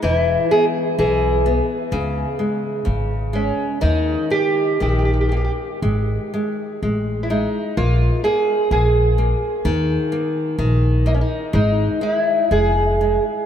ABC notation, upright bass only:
X:1
M:2/4
L:1/8
Q:1/4=63
K:D#phr
V:1 name="Upright bass" clef=bass
E,,, z B,,,2 | C,, z G,,,2 | D,, z A,,,2 | G,,, z =A,,,2 |
_B,,, z B,,,2 | D,, z A,,,2 | _A,,, z =F,,,2 |]